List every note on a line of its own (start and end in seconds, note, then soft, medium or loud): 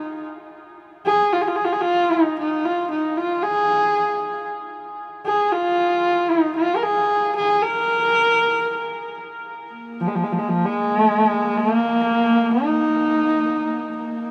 0.00 0.27 D#4 medium
1.06 1.34 G#4 loud
1.33 1.43 F4 medium
1.41 1.49 G#4 medium
1.48 1.57 F4 medium
1.56 1.66 G#4 medium
1.65 1.74 F4 medium
1.73 1.83 G#4 medium
1.81 2.14 F4 loud
2.12 2.38 D#4 medium
2.39 2.66 D#4 medium
2.65 2.90 F4 medium
2.91 3.19 D#4 medium
3.17 3.44 F4 medium
3.43 4.48 G#4 loud
5.26 5.54 G#4 medium
5.52 6.32 F4 medium
6.31 6.55 D#4 medium
6.56 6.78 F4 medium
6.76 6.84 A#4 medium
6.82 7.35 G#4 medium
7.36 7.64 G#4 medium
7.63 9.21 A#4 loud
9.72 13.96 A#3 medium
10.01 10.09 F3 medium
10.08 10.17 G#3 medium
10.15 10.25 F3 medium
10.24 10.34 G#3 medium
10.32 10.40 F3 medium
10.38 10.50 G#3 medium
10.49 10.67 F3 medium
10.65 11.59 G#3 medium
11.58 12.66 A#3 loud
12.64 14.31 D#4 medium
13.97 14.31 A#3 medium